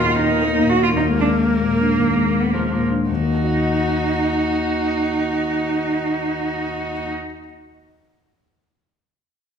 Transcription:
Already playing: grand piano D#2 A#2 A#3 B3 D#4, viola D#3, cello F4
0.09 grand piano A#3
0.19 cello D#4
0.26 grand piano B3
0.41 grand piano A#3, viola A#3
0.59 grand piano A#2
0.70 cello F#4
0.76 grand piano D#4
0.83 cello F4
0.93 grand piano D#2, cello D#4
1.10 grand piano G#3
1.21 cello D4
1.28 grand piano A#3
1.45 grand piano G#3, cello A#3
1.62 grand piano A#2
1.81 grand piano D4
1.98 grand piano D#2
2.16 grand piano G#3
2.36 grand piano A#3
2.40 cello B3
2.51 viola F3, grand piano G#3, cello A#3
2.61 cello G#3
2.72 grand piano A#2, cello A#3
2.91 grand piano D4
3.09 grand piano D#2, cello D#4, viola F#4
3.16 grand piano D#3
3.23 grand piano A#3
3.30 grand piano D#4
3.37 grand piano F#4
3.44 grand piano D#5

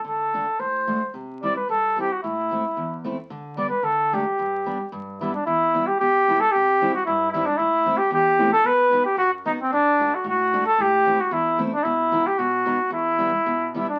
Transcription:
0.04 steel-string acoustic guitar D3, flugelhorn A4
0.34 steel-string acoustic guitar A3 D4 F#4
0.59 steel-string acoustic guitar A2, flugelhorn C5
0.87 steel-string acoustic guitar A3 D4 F#4
1.14 steel-string acoustic guitar C3
1.43 steel-string acoustic guitar G3 C4 E4, flugelhorn D5
1.56 flugelhorn B4
1.69 steel-string acoustic guitar G2, flugelhorn A4
1.96 steel-string acoustic guitar G3 C4 E4
2.00 flugelhorn G4
2.12 flugelhorn F#4
2.23 steel-string acoustic guitar A2, flugelhorn E4
2.51 steel-string acoustic guitar A3 C4 E4
2.77 steel-string acoustic guitar E2
3.04 steel-string acoustic guitar A3 C4 E4
3.30 steel-string acoustic guitar D3
3.57 steel-string acoustic guitar G3 B3 D4, flugelhorn D5
3.70 flugelhorn B4
3.83 steel-string acoustic guitar D3, flugelhorn A4
4.13 steel-string acoustic guitar F#3 A3 D4, flugelhorn G4
4.39 steel-string acoustic guitar G2
4.66 steel-string acoustic guitar G3 B3 D4
4.92 steel-string acoustic guitar G2
5.21 steel-string acoustic guitar G3 B3 D4, flugelhorn E4
5.34 flugelhorn D4
5.46 steel-string acoustic guitar E2, flugelhorn E4
5.74 steel-string acoustic guitar G3 B3 E4
5.87 flugelhorn G4
6.00 steel-string acoustic guitar B2, flugelhorn G4
6.28 steel-string acoustic guitar G3 B3 E4
6.40 flugelhorn A4
6.52 steel-string acoustic guitar C3, flugelhorn G4
6.81 steel-string acoustic guitar G3 C4 E4
6.94 flugelhorn F#4
7.06 steel-string acoustic guitar G2, flugelhorn E4
7.32 steel-string acoustic guitar G3 C4, flugelhorn E4
7.36 steel-string acoustic guitar E4
7.46 flugelhorn D4
7.57 steel-string acoustic guitar A2, flugelhorn E4
7.86 steel-string acoustic guitar A3 C4 E4
7.98 flugelhorn G4
8.11 steel-string acoustic guitar E2, flugelhorn G4
8.39 steel-string acoustic guitar A3 C4 E4
8.53 flugelhorn A4
8.64 steel-string acoustic guitar B2, flugelhorn B4
8.91 steel-string acoustic guitar B3 D#4 F#4
9.05 flugelhorn G4
9.17 steel-string acoustic guitar F#2, flugelhorn F#4
9.45 steel-string acoustic guitar B3 D#4 F#4, flugelhorn D#4
9.62 flugelhorn C4
9.73 steel-string acoustic guitar D3, flugelhorn D4
10.00 steel-string acoustic guitar A3 D4 F#4
10.15 flugelhorn F#4
10.24 steel-string acoustic guitar A2, flugelhorn F#4
10.54 steel-string acoustic guitar A3 D4 F#4
10.66 flugelhorn A4
10.78 steel-string acoustic guitar A2, flugelhorn G4
11.05 steel-string acoustic guitar A3 C4 E4
11.21 flugelhorn F#4
11.31 steel-string acoustic guitar E2, flugelhorn E4
11.58 steel-string acoustic guitar A3 C4 E4
11.74 flugelhorn D4
11.84 steel-string acoustic guitar B2, flugelhorn E4
12.12 steel-string acoustic guitar F#3 B3 E4
12.27 flugelhorn G4
12.39 steel-string acoustic guitar B2, flugelhorn F#4
12.65 steel-string acoustic guitar F#3 B3 D#4
12.90 steel-string acoustic guitar E2, flugelhorn E4
13.19 steel-string acoustic guitar G3 B3 E4
13.46 steel-string acoustic guitar B2
13.74 steel-string acoustic guitar G3 B3 E4, flugelhorn E4
13.89 flugelhorn D4

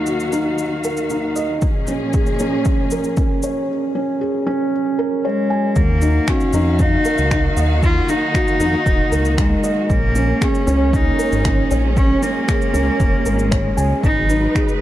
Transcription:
Already playing: string section D#2 D#3 F#4 F5, felt piano D#4 A#4 D#5
0.06 felt piano F#4, shaker
0.20 shaker
0.32 felt piano D#4, shaker
0.58 shaker
0.84 felt piano A#4, shaker
0.97 shaker
1.10 felt piano D#4, shaker
1.36 felt piano D#5, shaker
1.62 string section A#2 F3 C#4 G#4, kick, shaker
1.87 felt piano C#4, shaker
2.13 felt piano G#4, kick, shaker
2.26 shaker
2.39 felt piano C#4, shaker
2.65 kick, shaker
2.91 felt piano A#4, shaker
3.04 shaker
3.17 felt piano C#4, kick, shaker
3.43 felt piano C#5, shaker
3.95 felt piano C#4
4.21 felt piano G#4
4.47 felt piano C#4
4.99 felt piano A#4
5.25 cello G#3, felt piano C#5
5.50 felt piano G#5
5.76 detuned saw bass D#2, string section D#3 A#3 F#4 F5, cello A#3, kick, shaker
6.02 felt piano D#4, shaker
6.28 cello C#4, felt piano F#4, finger snap, kick, shaker
6.40 shaker
6.53 detuned saw bass F2, felt piano D#4, shaker
6.79 cello D#4, kick, shaker
7.05 felt piano A#4, shaker
7.18 detuned saw bass C#2, shaker
7.31 felt piano D#4, finger snap, kick, shaker
7.57 detuned saw bass D#2, felt piano D#5, shaker
7.83 cello F4, kick, shaker
8.09 felt piano D#4, cello D#4, shaker
8.34 felt piano F#4, finger snap, kick, shaker
8.48 shaker
8.60 detuned saw bass F2, felt piano D#4, shaker
8.86 detuned saw bass D#1, kick, shaker
9.12 detuned saw bass C#2, felt piano A#4, shaker
9.25 shaker
9.38 cello G#3, felt piano D#4, finger snap, kick, shaker
9.64 felt piano D#5, shaker
9.90 detuned saw bass A#1, string section G#3 C#4, cello A#3, kick, shaker
10.15 felt piano C#4, shaker
10.42 cello C#4, felt piano G#4, finger snap, kick, shaker
10.55 shaker
10.67 detuned saw bass C#2, felt piano C#4, shaker
10.93 cello D#4, kick, shaker
11.19 felt piano A#4, shaker
11.32 detuned saw bass G#1, shaker
11.45 felt piano C#4, finger snap, kick, shaker
11.71 detuned saw bass A#1, felt piano C#5, shaker
11.97 cello C#4, kick, shaker
12.22 cello A#3, felt piano C#4, shaker
12.48 felt piano G#4, finger snap, kick, shaker
12.62 shaker
12.74 detuned saw bass C#2, felt piano C#4, shaker
13.00 detuned saw bass F1, kick, shaker
13.26 detuned saw bass G#1, felt piano A#4, shaker
13.39 shaker
13.51 felt piano C#5, finger snap, kick, shaker
13.77 detuned saw bass C#2, felt piano G#5, shaker
14.04 detuned saw bass G#1, string section F#3 D#4 B4, cello D#4, kick, shaker
14.29 felt piano D#4, shaker
14.55 felt piano G#4, finger snap, kick, shaker
14.69 shaker

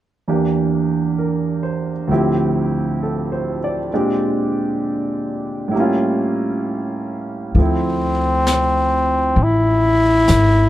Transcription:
0.28 grand piano E2 E3 A#3 D4 G4
1.19 grand piano A#4
1.63 grand piano C5
2.08 grand piano D2 A2 F3 C4 E4
2.13 grand piano G4
3.03 grand piano A4
3.32 grand piano C5
3.64 grand piano D5
3.93 grand piano A#2 G#3 C4 D4 G4
5.68 grand piano A2 E4
5.73 grand piano G3 A#3
5.78 grand piano C#4 F4
7.55 upright bass D2, grand piano F3 A3 C4, brush sweep
7.61 flugelhorn C4, grand piano E4
8.47 snare, hi-hat pedal
9.36 upright bass A1, brush sweep
9.43 flugelhorn E4
10.28 upright bass G#1, snare, hi-hat pedal

